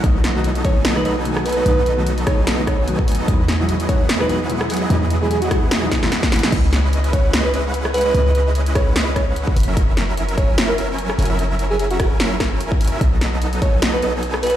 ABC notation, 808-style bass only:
X:1
M:4/4
L:1/8
Q:"Swing 16ths" 1/4=148
K:C#m
V:1 name="808-style bass" clef=bass
B,,,8 | B,,,8 | E,,8 | E,,8 |
C,,8 | C,,6- C,, F,,,- | F,,,6- F,,, F,,,- | F,,,6- F,,, z |
B,,,8 |]